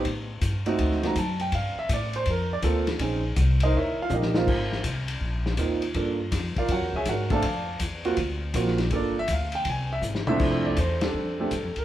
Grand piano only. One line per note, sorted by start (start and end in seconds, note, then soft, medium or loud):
0.66 1.01 A3 medium
0.66 1.01 C4 medium
0.66 1.01 D#4 medium
0.66 1.01 F#4 medium
1.04 1.15 A3 medium
1.04 1.15 C4 medium
1.04 1.15 D#4 medium
1.04 1.15 F#4 medium
1.04 1.17 A#5 medium
1.18 1.41 A5 medium
1.41 1.53 G5 medium
1.55 1.77 F5 medium
1.79 1.90 E5 medium
1.94 2.15 D5 medium
2.16 2.27 C5 medium
2.31 2.52 A#4 medium
2.53 2.60 D5 loud
2.64 2.85 A#3 medium
2.64 2.85 C4 medium
2.64 2.85 F4 medium
2.64 2.85 A4 medium
3.00 3.22 C4 medium
3.00 3.22 C#4 medium
3.00 3.22 D#4 medium
3.00 3.22 G#4 medium
3.63 3.75 D#4 medium
3.63 3.75 A#4 medium
3.63 3.75 C5 medium
3.63 3.74 D#5 medium
3.77 3.99 E4 medium
3.77 3.99 A#4 medium
3.77 3.99 C#5 medium
3.77 3.99 E5 medium
4.02 4.12 F4 medium
4.02 4.12 F5 loud
4.14 4.34 D#4 medium
4.14 4.36 G4 medium
4.14 4.36 A#4 medium
4.14 4.36 D#5 medium
4.35 4.46 A#3 medium
4.35 4.47 C4 medium
4.35 4.47 D#4 medium
4.35 4.47 F4 medium
4.35 4.82 A#4 medium
4.35 4.82 C5 medium
4.35 4.82 F5 medium
5.59 5.80 A#3 medium
5.59 5.80 C4 medium
5.59 5.81 D#4 medium
5.59 5.81 F4 medium
5.96 6.17 A#3 medium
5.96 6.17 D4 medium
5.96 6.17 F4 soft
5.96 6.17 A4 medium
6.58 6.70 F4 medium
6.58 6.70 A#4 medium
6.58 6.70 D5 medium
6.58 6.70 F5 medium
6.72 6.95 F#4 medium
6.72 6.95 A#4 medium
6.72 6.95 C#5 medium
6.72 6.94 F#5 medium
6.96 7.07 G#4 medium
6.96 7.07 C#5 medium
6.96 7.07 E5 medium
6.96 7.07 G#5 medium
7.09 7.32 F#4 medium
7.09 7.32 A#4 medium
7.09 7.32 C#5 medium
7.09 7.31 F#5 medium
7.31 7.42 A3 medium
7.31 7.42 C4 medium
7.31 7.42 D4 medium
7.31 7.42 A4 medium
7.31 7.78 D5 medium
7.31 7.78 F5 medium
7.31 7.78 A5 loud
8.05 8.16 A#3 medium
8.05 8.16 C4 medium
8.05 8.16 F4 medium
8.05 8.16 F#4 medium
8.55 8.77 A#3 medium
8.55 8.77 C4 medium
8.55 8.77 F4 medium
8.55 8.77 F#4 medium
8.92 9.14 A#3 medium
8.92 9.14 D4 medium
8.92 9.14 F4 medium
8.92 9.14 A4 medium
8.92 9.17 D5 medium
9.19 9.30 E5 loud
9.33 9.55 F5 medium
9.55 9.66 G5 loud
9.70 9.92 G#5 loud
9.93 9.99 E5 loud
10.28 10.75 F2 medium
10.28 10.75 A3 medium
10.28 10.75 C4 medium
10.28 10.75 D4 medium
10.28 10.75 E4 loud
10.28 10.99 A4 medium
10.28 10.78 C5 medium
10.28 10.66 E5 loud
10.66 10.77 D5 medium
10.79 11.03 C5 medium
11.03 11.38 C4 medium
11.03 11.38 D4 medium
11.03 11.39 A4 medium
11.40 11.51 A3 medium
11.40 11.51 C4 medium
11.40 11.51 D4 medium
11.40 11.51 G4 medium
11.40 11.74 A4 medium
11.78 11.85 A#4 medium